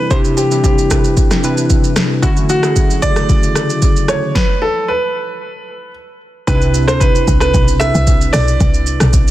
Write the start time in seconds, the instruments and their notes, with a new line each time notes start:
Already playing: synth keys C3 C4 D4 E4 A4 C5 D5, analog synth pad E3 G3 C4 D4 E4, grand piano B4
0.11 synth keys C3 C4 D4 E4 G4, grand piano C5, kick, shaker
0.25 shaker
0.37 grand piano G4, shaker
0.51 synth keys C3 C4 D4 E4 G4, shaker
0.64 grand piano G4, kick, shaker
0.78 shaker
0.90 synth keys C3 C4 D4 E4 B4, kick, cross-stick, shaker
1.04 shaker
1.17 kick, shaker
1.31 cross-stick, snare, shaker
1.43 synth keys C3 C4 D4 E4 B4, shaker
1.58 shaker
1.70 kick, shaker
1.84 shaker
1.96 cross-stick, snare, shaker
2.22 synth keys D3 A3 C#4 E4 F#4, analog synth pad F#3 A3, grand piano F#4, kick, shaker
2.37 shaker
2.49 grand piano F#4, shaker
2.63 synth keys D3 A3 C#4 E4 G#4, cross-stick, shaker
2.76 kick, shaker
2.90 shaker
3.02 synth keys C#3 D3 A3 E4 F#4, grand piano D5, kick, shaker
3.10 synth keys G#4
3.16 cross-stick, shaker
3.29 kick, shaker
3.43 shaker
3.55 cross-stick, shaker
3.70 shaker
3.82 kick, shaker
3.96 shaker
4.08 grand piano C#5, cross-stick, shaker
4.35 grand piano B4, kick, snare
4.62 grand piano A4
4.88 grand piano B4
6.47 log drum bass C2, synth keys C3 C4 D4 D#4 B4, grand piano B4, kick, shaker
6.55 synth keys E4
6.62 shaker
6.74 shaker
6.88 log drum bass D2, grand piano C5, cross-stick, shaker
7.00 grand piano B4, kick, shaker
7.15 shaker
7.28 log drum bass C2, kick, shaker
7.40 grand piano B4, cross-stick, shaker
7.54 log drum bass B1, kick, shaker
7.68 shaker
7.80 synth keys C3 C4 D4 E4 B4, grand piano E5, cross-stick, shaker
7.95 log drum bass C2, shaker
8.07 kick, shaker
8.21 shaker
8.33 log drum bass B1, grand piano D5, cross-stick, open hi-hat, shaker
8.48 shaker
8.60 log drum bass C2, kick, shaker
8.74 shaker
8.87 shaker
9.00 log drum bass B1, cross-stick, shaker
9.13 kick, shaker
9.28 shaker